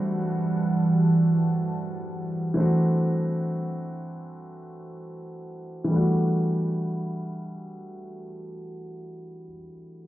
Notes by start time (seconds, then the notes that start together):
Already playing: E3 G3 A3 C4 D4 F#4 D5 F#5 A5
2.54 E3 A3 C4
2.58 D4 F#4
5.84 E3 G3
5.90 A3 D4
5.96 F#4